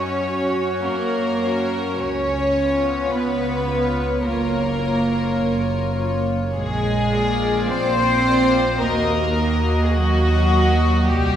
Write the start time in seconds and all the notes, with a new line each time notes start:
Already playing: F#2 C#4 F#4 C#5
0.25 C#4 F#4 C#5
0.84 F#2 A#3 A#4
1.41 C#4 F#4 C#5
1.98 C#2 C#4 C#5
2.55 B3 F4 C#5
3.10 C#2 B3 B4
3.66 B3 F4 C#5
4.24 F#1 A#3 F4 A#4 C#5
4.81 A#3 F4 C#5
5.39 F#1
5.96 A#3 F4 C#5
6.54 A#1 G#3 G#4
7.11 A#3 F4 D5
7.68 A#1 C4 C5
8.25 A#3 F4 D5
8.80 D#2 A#3 F#4 A#4 D#5
9.36 A#3 F#4 D#5
9.84 G#4
9.91 D#2 F#3 F#4
10.47 A#3 F#4 D#5
11.04 C2 G3 G4